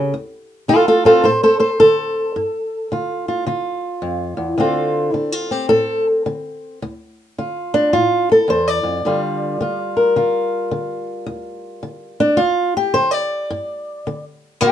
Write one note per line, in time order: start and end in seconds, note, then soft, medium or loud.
0.00 0.13 C#3 medium
0.00 0.11 G4 soft
0.00 0.14 A4 medium
0.14 0.65 D2 medium
0.68 1.20 D3 medium
0.68 0.87 F4 medium
0.68 0.87 A4 medium
0.88 1.05 F4 medium
0.88 1.05 A4 medium
1.05 2.34 C4 soft
1.05 1.25 F4 medium
1.05 1.22 A4 medium
1.24 1.76 A2 medium
1.24 1.30 A4 medium
1.24 1.42 C5 medium
1.43 1.54 A4 medium
1.43 1.59 C5 medium
1.60 1.69 A4 medium
1.60 1.79 C5 medium
1.80 2.33 D3 medium
1.80 3.47 A4 medium
2.36 2.88 G2 medium
2.92 3.43 D3 medium
2.92 3.28 F4 soft
3.28 3.47 F4 soft
3.47 3.99 D3 medium
3.47 4.60 F4 soft
4.02 4.37 F2 medium
4.37 4.57 E2 medium
4.58 5.10 D2 medium
4.58 5.14 D3 soft
4.58 5.51 C4 medium
4.58 5.14 F4 medium
4.58 5.52 A4 medium
5.14 5.66 D3 medium
5.14 5.32 D4 medium
5.32 5.51 F4 medium
5.51 6.79 C4 soft
5.51 5.69 G4 medium
5.69 6.22 A2 medium
5.69 6.05 A4 loud
6.26 6.78 D3 medium
6.82 7.34 D2 medium
7.38 7.89 D3 medium
7.38 7.93 F4 soft
7.74 7.93 D4 medium
7.93 8.45 A2 medium
7.93 8.30 F4 medium
8.32 8.49 A4 medium
8.48 8.83 E2 medium
8.48 8.68 C5 medium
8.68 9.79 D5 medium
8.83 9.04 F2 medium
9.05 9.56 G2 medium
9.05 9.59 D3 soft
9.05 12.20 G3 soft
9.05 9.61 F4 medium
9.61 10.12 D3 medium
9.61 10.16 F4 soft
9.97 12.93 A#4 soft
10.16 10.68 D3 medium
10.16 12.37 F4 soft
10.71 11.23 D3 medium
11.27 11.79 D2 medium
11.83 12.35 D3 medium
12.20 12.39 D4 loud
12.37 12.90 D2 medium
12.37 12.75 F4 medium
12.77 12.95 G4 medium
12.94 13.46 D3 medium
12.94 13.11 C5 loud
13.11 14.23 D5 loud
13.50 14.02 G2 medium
14.07 14.61 D3 medium
14.61 14.72 D3 medium
14.61 14.72 A#3 medium
14.61 14.72 G4 loud